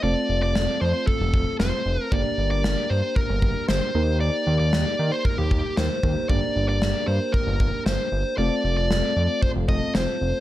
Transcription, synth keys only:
X:1
M:4/4
L:1/8
Q:1/4=115
K:Gm
V:1 name="Synth keys"
[A,CFA]8 | [B,DGB]6- [B,DGB] [B,EGB]- | [B,EGB]6- [B,EGB] [B,EGB] | [B,DGB]8 |
[A,CFA]4- [A,CFA] [A,CFA]3 |]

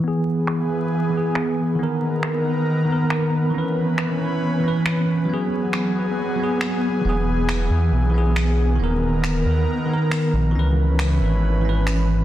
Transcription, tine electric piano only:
X:1
M:4/4
L:1/8
Q:"Swing 16ths" 1/4=137
K:Elyd
V:1 name="Tine electric piano"
[E,B,G]4- [E,B,G] [E,B,G]3 | [D,B,A]4- [D,B,A] [D,B,A]3 | [E,CB]4- [E,CB] [E,CB]3 | [F,B,G]4- [F,B,G] [F,B,G]3 |
[E,B,G]4- [E,B,G] [E,B,G]3 | [D,B,A]4- [D,B,A] [D,B,A]3 | [E,CB]4- [E,CB] [E,CB]3 |]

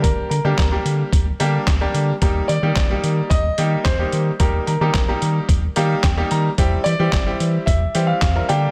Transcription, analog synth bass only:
X:1
M:4/4
L:1/16
Q:1/4=110
K:Eblyd
V:1 name="Analog synth bass" clef=bass
D,2 D, D, D,,2 D,2 D,,2 D,2 D,,2 D,2 | E,,2 E, E, B,,,2 E,2 E,,2 E,2 E,,2 E,2 | E,,2 E, E, B,,,2 E,2 E,,2 E,2 E,,2 E,2 | =E,,2 =E, E, G,,,2 E,2 E,,2 E,2 E,,2 D,2 |]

